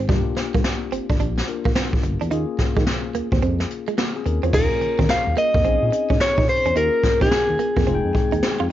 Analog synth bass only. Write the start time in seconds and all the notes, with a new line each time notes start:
0.09 G1
0.37 G2
0.55 G2
0.92 G1
1.10 G1
1.20 A#1
2.04 G1
2.22 E2
2.32 D#2
2.59 D#3
2.77 D#3
3.15 D#2
3.32 D#2
3.43 F2
4.26 D#2
4.44 E2
4.53 D#2
4.82 D#3
4.99 D#3
5.09 D#2
5.27 D#2
5.54 F2
5.65 A#1
5.83 A#2
6.10 G#2
6.38 A#2
6.66 E2
6.76 D#2
7.04 D#3
7.22 D#3
7.32 D#2
7.49 D#2
7.77 F2
7.87 F1
8.05 F2
8.33 D#2
8.60 F2